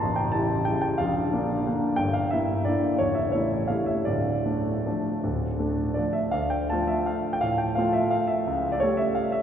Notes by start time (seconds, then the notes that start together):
Already playing: A5
0.03 A0 A1
0.16 G5
0.32 G3 E4 A5
0.65 C#3 G3 E4 G5
0.81 G5
0.98 A#0 A#1 F5
1.33 A#3 D4
1.66 D3 A#3 D4
1.96 G1 G2 G5
2.13 F5
2.31 A#3 E4 E5
2.65 D3 A#3 E4 D5
2.98 A0 A1 C#5
3.15 E5
3.32 A3 E4 C#5
3.68 G3 A3 E4 F5
3.86 E5
4.05 D1 D2 D5
4.46 A3 D4
4.87 F3 A3 D4
5.24 D1 D2
5.59 A3 D4
5.94 F3 A3 D4 D5
6.13 E5
6.31 D2 F5
6.50 G5
6.70 F3 A3 F4 A5
6.88 E5
7.06 F5
7.33 G5
7.41 A2 F5
7.58 G5
7.75 F3 A3 F4 F5
7.93 E5
8.11 F5
8.27 E5
8.47 C#2
8.72 D5
8.80 G3 A3 A4 C#5
8.97 E5
9.15 F5
9.32 E5